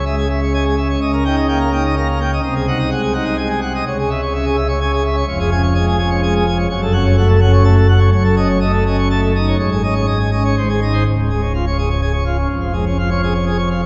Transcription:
pipe organ
Already playing: C#2 C#3
0.05 G#3 E5
0.18 G#4
0.30 E5
0.43 C#5
0.54 G#3 G#5
0.66 G#4
0.78 E5
0.90 C#5
1.01 C#2 C#3 D#5
1.13 A#4
1.25 D#4 G5
1.36 D#5
1.48 A#3 G5
1.61 A#4
1.72 D#4 G5
1.85 D#5
1.97 A#3 A#5
2.10 A#4
2.21 G5
2.33 D#5
2.43 C2 C3 D#5
2.56 G#4
2.68 D#4 F#5
2.79 D#5
2.91 G#3 F#5
3.02 G#4
3.13 D#4 F#5
3.26 D#5
3.37 G#3 G#5
3.49 G#4
3.62 F#5
3.74 D#5
3.87 C#2 C#3 C#5
3.99 G#4
4.10 E5
4.22 C#5
4.34 C#4 E5
4.46 G#4
4.56 E5
4.68 C#5
4.81 C#4 G#5
4.93 G#4
5.05 E5
5.16 C#5
5.28 F1 F2 C#5
5.39 G#4
5.51 C#4 G#5
5.63 C#5
5.74 G#3 G#5
5.88 G#4
5.99 C#4 G#5
6.10 C#5
6.23 G#3 G#5
6.35 G#4
6.47 G#5
6.59 C#5
6.70 F#1 F#2 C#5
6.82 A4
6.93 C#4 F#5
7.05 C#5
7.17 A3 F#5
7.29 A4
7.41 C#4 F#5
7.53 C#5
7.64 A3 A5
7.76 A4
7.88 F#5
7.99 C#5
8.12 F#1 F#2 C#5
8.24 A4
8.36 C#4 D#5
8.48 C#5
8.61 A3 D#5
8.73 A4
8.86 C#4 D#5
8.98 C#5
9.10 A3 A5
9.23 A4
9.35 D#4 D#5
9.47 C#5
9.59 G#1 G#2 C#5
9.71 G#4
9.83 C#4 D#5
9.95 C#5
10.07 G#3 D#5
10.19 G#4
10.32 C#4 D#5
10.45 C#5
10.57 G#1 G#2 C5
10.69 G#4
10.82 D#4 D#5
10.93 C5
11.05 C#1 C#2
11.18 G#2
11.30 G#3
11.41 C#4
11.54 F4
11.67 C#5
11.78 G#4
11.90 C#5
12.01 G#4
12.13 C#5
12.25 F4
12.37 C#4
12.49 F1 F2
12.61 F3
12.73 G#3
12.86 C#4
12.99 F4
13.10 C#5
13.23 G#4
13.34 C#5
13.46 G#4
13.58 C#5
13.70 F4
13.82 C#4

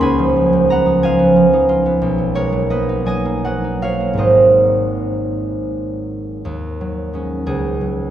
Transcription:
harp
Already playing: C#4 D#4 C#5 D#5 C6 C#6 D#6
0.01 C#2 G#5 B5
0.19 F3
0.36 F#3
0.53 F3
0.70 B3 F#5 A#5
0.86 D#4
1.03 F3 F5 G#5
1.19 B3
1.36 F3
1.53 D#4
1.69 F4
1.86 B3
2.02 B1
2.18 F#3
2.35 G#3 A#4 C#5
2.52 F#3
2.70 A#3 B4 D#5
2.89 D#4
3.06 F#3 D#5 G#5
3.25 A#3
3.45 F#3 D#5 F#5
3.64 D#4
3.82 F#4 C#5 F5
4.00 A#3
4.13 G#2 F#3 A#3 C4
4.17 G#1 C5 D#5
6.45 D#2
6.81 F#3
7.13 G#3 C#4
7.46 C#2 G#4
7.81 F#3

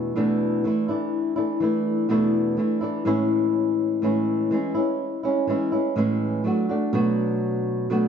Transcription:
nylon-string guitar
Already playing: E2 B2 E3 A3 D4 E4
0.16 E2 B2 E3 A3 D4 E4
0.64 E3 A3 D4 E4
0.88 E3 A3 D4 E4
1.36 E3 A3 D4 E4
1.60 E3 A3 D4 E4
2.09 E2 B2 E3 A3 D4 E4
2.57 E3 A3 D4 E4
2.81 E3 A3 D4 E4
3.05 A2 E3 G#3 C#4 E4
4.02 A2 E3 G#3 C#4 E4
4.51 E3 G#3 C#4 E4
4.74 G#3 C#4 E4
5.23 G#3 C#4 E4
5.47 E3 G#3 C#4 E4
5.72 G#3 C#4 E4
5.96 A2 E3 G#3 C#4 E4
6.44 F#3 A3 D4 F#4
6.69 A3 D4 F#4
6.93 B2 F#3 A3 D4 F#4
7.90 B2 F#3 A3 D4 F#4

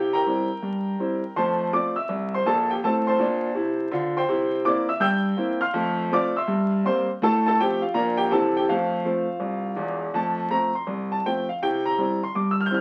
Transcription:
grand piano
Already playing: C3 E4 G4 G5
0.13 A#4 G5 A#5
0.27 G3 C4 E4
0.63 G2
0.99 G3 C4 E4
1.36 F2 A3 C5 A5 C6
1.73 A3 C4 F4 D5 D6
1.96 E5 E6
2.09 C2
2.34 C5 C6
2.46 A#1 A#2 A4 A5
2.71 G4 G5
2.84 A2 C4 A4 A5
3.07 C5 A5 C6
3.19 A#2 D4
3.54 C3 E4
3.91 D3 F4
4.17 C5 G5 C6
4.28 C3 E4
4.65 A#3 C4 E4 D5 D6
4.89 E5 E6
5.00 G2 G5 E6 G6
5.37 A#3 C4 E4
5.61 F5 C6 F6
5.74 F2 A3
6.12 A3 C4 F4 D5 D6
6.37 E5 C6 E6
6.48 G2
6.84 G3 A#3 C4 C5 C6
7.22 A2 A4 A5
7.47 A4 A5
7.60 F3 A3 C4 G4 G5
7.82 F4 F5
7.94 A#2 F3 D4 F4 A#4 A#5
8.17 G4 G5
8.31 C3 E3 C4 E4 A4 A5
8.57 G4 G5
8.69 F2 A3 F4 C5 F5
9.05 F3 A3 C4
9.40 C2
9.76 E1 E2
10.14 F2 A3 A5
10.49 F3 A3 C4 A#5
10.75 C6
10.87 C2
11.12 A5
11.26 F3 A3 C4 G5
11.49 F5
11.62 C3 E4 G5
11.86 A#5
11.98 G3 C4 E4
12.23 C6
12.35 G2 D6
12.51 E6
12.60 F6
12.66 G6
12.71 G3 C4 E4 F6

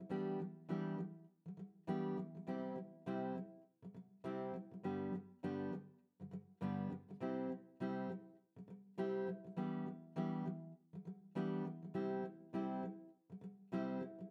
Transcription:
steel-string acoustic guitar
0.00 G3
0.09 E3 G3 B3 D4 G4
0.40 E3 G3
0.69 E3 G3 B3 D4 G4
0.98 E3 G3
1.46 E3 G3
1.57 E3 G3
1.87 E3 G3 B3 D4 G4
2.17 E3 G3
2.35 E3 G3
2.47 C3 G3 C4 E4 G4
2.76 C3 G3
3.06 C3 G3 C4 E4 G4
3.36 C3 G3
3.82 C3 G3
3.94 C3 G3
4.24 C3 G3 C4 E4 G4
4.54 C3 G3
4.71 C3 G3
4.83 G2 D3 G3 B3 D4 G4
5.13 G2 D3 G3
5.43 G2 D3 G3 B3 D4 G4
5.72 G2 D3 G3
6.20 G2 D3 G3
6.31 G2 D3 G3
6.61 G2 D3 G3 B3 D4 G4
6.90 G2 D3 G3
7.09 G2 D3 G3
7.20 C3 G3 C4 E4 G4
7.50 C3 G3
7.80 C3 G3 C4 E4 G4
8.09 C3 G3
8.56 C3 G3
8.68 C3 G3
8.98 C3 G3 C4 E4 G4
9.27 C3 G3
9.44 C3 G3
9.56 E3 G3 B3 D4 G4
9.86 E3 G3
10.16 E3 G3 B3 D4 G4
10.45 E3 G3
10.93 E3 G3
11.05 E3 G3
11.35 E3 G3 B3 D4 G4
11.65 E3 G3
11.83 E3 G3
11.94 C3 G3 C4 E4 G4
12.23 C3 G3
12.53 C3 G3 C4 E4 G4
12.83 C3 G3
13.30 C3 G3
13.41 C3 G3
13.72 C3 G3 C4 E4 G4
14.00 C3 G3
14.19 C3 G3

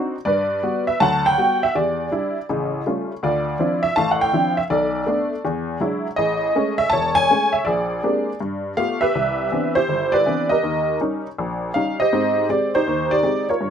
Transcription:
honky-tonk piano
Already playing: C4 D4 D#4 F#4
0.25 G2 B4 D5
0.63 G3 B3 F#4
0.87 E5
1.00 D2 F#3 F#5 A5
1.26 G5
1.38 G3 B3 F#4
1.63 E5
1.75 E2 G4 D5
2.11 G3 D4 E4
2.49 A1 C#3
2.86 G3 A3 C#4 F4
3.23 D2 F4 D5
3.59 F3 C4 D4 E4
3.83 E5
3.96 A1 A2 F5 A5
4.11 F#5
4.21 G5
4.33 F3 C4 D4 E4
4.57 E5
4.70 B1 A4 D5
5.07 A3 B3 D4
5.45 E2
5.81 F#3 G#3 D4 E4
6.16 A1 G#4 D#5
6.55 G#3 A3 C#4
6.78 E5
6.90 E1 C#5 A5
7.15 G#5
7.30 G#3 A3 C#4
7.53 E5
7.65 A#1 G#4 D5
8.04 G#3 A#3 C4 D4 G4
8.41 G2
8.77 A3 B3 F4 G4 F5
9.01 G4 B4 E5
9.15 C2
9.51 E3 B3 C4 D4
9.75 E4 G4 C5
9.89 G1
10.12 G4 B4 D5
10.26 E3 B3 C4 D4
10.49 G4 A#4 D#5
10.63 D#2
11.00 G3 C#4 D#4
11.38 A#1
11.74 G3 C#4 D#4 F5
12.00 G4 C5 D#5
12.13 G#2 C4
12.49 G#3 C4 G4 D5
12.75 D#4 G4 C5
12.87 D#2
13.11 G4 D5
13.23 G#3 C4 G4
13.49 F4 A#4 C#5
13.61 G2

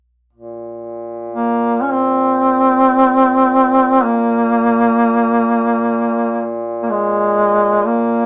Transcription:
duduk
0.33 A#2
1.32 A#3
1.83 C#4
1.92 C4
4.03 A#3
6.82 A#3
6.90 G#3
7.86 A#3

